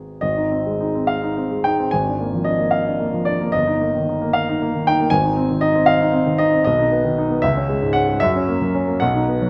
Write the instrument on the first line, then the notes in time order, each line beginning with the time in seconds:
grand piano
Already playing: G#1 G#3 B3 D#4 G#4
0.21 G#1 D#5
0.37 D#4
0.52 C4
0.66 G#3
0.81 D#4
0.95 C4
1.07 F5
1.24 D#4
1.37 C4
1.52 G#3
1.64 D#4 G5
1.80 C4
1.91 G#1 G#5
2.07 D4
2.20 A#3
2.33 F3
2.44 D4 D#5
2.59 A#3
2.71 F5
2.87 D4
3.00 A#3
3.14 F3
3.25 D4 D5
3.41 A#3
3.52 G1 D#5
3.67 D#4
3.80 A#3
3.95 D#3
4.09 D#4
4.21 A#3
4.33 F5
4.49 D#4
4.62 A#3
4.75 D#3
4.87 D#4 G5
5.00 A#3
5.10 G#1 G#5
5.25 D#4
5.37 C4
5.50 D#3
5.61 D#4 D#5
5.75 C4
5.86 F5
6.01 D#4
6.13 C4
6.27 D#3
6.38 D#4 D#5
6.53 C4
6.64 B1 D#5
6.79 D#4
6.92 B3
7.05 D#3
7.18 D#4
7.31 B3
7.42 C#2 E5
7.57 C#4
7.69 G#3
7.82 G#2
7.93 C#4 F#5
8.09 G#3
8.20 F#2 E5
8.36 C#4
8.48 A#3
8.61 F#3
8.75 C#4
8.88 A#3
9.00 B1 F#5
9.15 D#4
9.28 B3
9.42 F#3